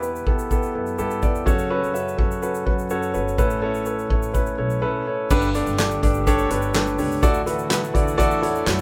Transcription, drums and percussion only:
0.03 shaker medium
0.16 shaker soft
0.27 kick medium
0.39 shaker soft
0.51 kick medium
0.51 shaker medium
0.63 shaker soft
0.86 shaker soft
0.98 shaker medium
1.11 shaker soft
1.22 kick medium
1.22 shaker soft
1.35 shaker soft
1.47 kick medium
1.47 shaker medium
1.59 shaker soft
1.84 shaker soft
1.95 shaker medium
2.08 shaker soft
2.19 kick medium
2.31 shaker soft
2.43 shaker medium
2.55 shaker soft
2.67 kick medium
2.79 shaker soft
2.90 shaker medium
3.02 shaker soft
3.14 shaker soft
3.28 shaker soft
3.38 kick medium
3.38 shaker medium
3.50 shaker soft
3.74 shaker soft
3.85 shaker medium
3.99 shaker soft
4.10 kick medium
4.22 shaker soft
4.35 kick medium
4.35 shaker medium
4.46 shaker soft
4.70 shaker soft
5.30 kick loud
5.30 crash medium
5.30 shaker medium
5.42 shaker medium
5.54 closed hi-hat medium
5.54 shaker soft
5.66 shaker soft
5.78 snare loud
5.78 clap medium
5.78 closed hi-hat medium
5.78 shaker medium
5.91 shaker soft
6.03 kick medium
6.03 closed hi-hat medium
6.14 shaker soft
6.27 kick medium
6.27 closed hi-hat medium
6.27 shaker medium
6.39 shaker soft
6.50 closed hi-hat medium
6.62 shaker soft
6.74 snare loud
6.74 clap medium
6.74 closed hi-hat medium
6.74 shaker medium
6.87 shaker soft
6.98 open hi-hat medium
6.98 shaker soft
7.12 shaker soft
7.23 kick loud
7.23 closed hi-hat medium
7.23 shaker medium
7.34 shaker medium
7.47 closed hi-hat medium
7.47 shaker soft
7.59 shaker soft
7.71 snare loud
7.71 clap medium
7.71 closed hi-hat medium
7.71 shaker medium
7.84 shaker soft
7.95 kick medium
7.95 closed hi-hat medium
8.08 shaker medium
8.19 kick medium
8.19 closed hi-hat medium
8.19 shaker medium
8.31 shaker soft
8.43 closed hi-hat medium
8.55 shaker soft
8.67 snare loud
8.67 clap medium
8.67 closed hi-hat medium
8.67 shaker medium

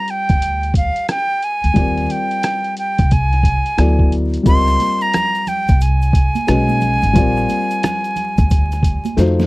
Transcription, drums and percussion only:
0.08 closed hi-hat medium
0.29 kick medium
0.29 closed hi-hat soft
0.42 closed hi-hat medium
0.63 closed hi-hat soft
0.74 kick medium
0.74 closed hi-hat medium
0.96 closed hi-hat medium
1.09 cross-stick loud
1.09 closed hi-hat medium
1.43 closed hi-hat medium
1.64 closed hi-hat medium
1.76 kick loud
1.76 closed hi-hat medium
1.97 cross-stick soft
1.97 closed hi-hat soft
2.10 closed hi-hat medium
2.31 closed hi-hat soft
2.43 cross-stick loud
2.43 closed hi-hat medium
2.64 closed hi-hat soft
2.77 closed hi-hat medium
2.98 kick medium
2.98 closed hi-hat soft
3.11 kick medium
3.11 closed hi-hat medium
3.33 cross-stick soft
3.33 closed hi-hat soft
3.43 kick medium
3.43 closed hi-hat medium
3.66 closed hi-hat medium
3.78 cross-stick loud
3.78 closed hi-hat medium
3.99 kick medium
4.12 closed hi-hat medium
4.34 closed hi-hat medium
4.46 kick loud
4.46 closed hi-hat medium
4.46 shaker medium
4.67 cross-stick soft
4.67 closed hi-hat soft
4.67 shaker soft
4.80 closed hi-hat medium
4.80 high conga soft
4.80 shaker soft
5.01 closed hi-hat soft
5.01 shaker soft
5.13 cross-stick loud
5.13 closed hi-hat medium
5.13 low conga medium
5.13 shaker medium
5.35 closed hi-hat soft
5.35 shaker soft
5.47 closed hi-hat medium
5.47 low conga medium
5.47 shaker soft
5.68 kick medium
5.68 closed hi-hat soft
5.68 shaker soft
5.81 closed hi-hat medium
5.81 shaker medium
6.02 closed hi-hat soft
6.02 shaker soft
6.13 kick medium
6.13 closed hi-hat medium
6.13 shaker soft
6.35 closed hi-hat medium
6.35 high conga medium
6.35 shaker soft
6.48 cross-stick loud
6.48 closed hi-hat medium
6.48 shaker medium
6.69 high conga medium
6.69 shaker soft
6.81 closed hi-hat medium
6.81 low conga medium
6.81 shaker soft
7.02 closed hi-hat medium
7.02 shaker soft
7.15 kick loud
7.15 closed hi-hat medium
7.15 shaker medium
7.36 cross-stick soft
7.36 shaker soft
7.49 closed hi-hat medium
7.49 high conga soft
7.49 shaker soft
7.70 closed hi-hat soft
7.70 shaker soft
7.83 cross-stick loud
7.83 closed hi-hat medium
7.83 low conga medium
7.83 shaker medium
8.04 closed hi-hat soft
8.04 shaker soft
8.16 closed hi-hat medium
8.16 low conga medium
8.16 shaker soft
8.38 kick medium
8.38 closed hi-hat soft
8.38 shaker soft
8.50 kick medium
8.50 closed hi-hat medium
8.50 shaker medium
8.72 cross-stick soft
8.72 closed hi-hat soft
8.72 shaker soft
8.83 kick medium
8.83 closed hi-hat medium
8.83 shaker soft
9.05 closed hi-hat medium
9.05 high conga medium
9.05 shaker soft
9.18 snare medium
9.18 closed hi-hat medium
9.18 shaker medium
9.39 snare medium
9.39 high conga medium
9.39 shaker soft

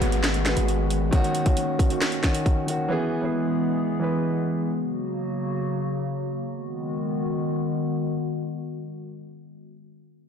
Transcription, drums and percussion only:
0.02 closed hi-hat medium
0.12 closed hi-hat medium
0.24 finger snap medium
0.24 snare loud
0.24 closed hi-hat medium
0.34 closed hi-hat medium
0.46 finger snap medium
0.46 snare medium
0.46 closed hi-hat medium
0.57 closed hi-hat medium
0.68 closed hi-hat soft
0.91 closed hi-hat medium
1.13 kick loud
1.13 closed hi-hat medium
1.24 closed hi-hat medium
1.35 closed hi-hat medium
1.46 kick medium
1.46 closed hi-hat medium
1.57 closed hi-hat medium
1.79 kick medium
1.79 closed hi-hat medium
1.90 closed hi-hat medium
2.02 finger snap loud
2.02 snare loud
2.02 closed hi-hat medium
2.12 closed hi-hat medium
2.23 finger snap medium
2.23 kick medium
2.23 snare medium
2.23 closed hi-hat medium
2.35 closed hi-hat medium
2.46 kick medium
2.46 closed hi-hat soft
2.68 closed hi-hat medium

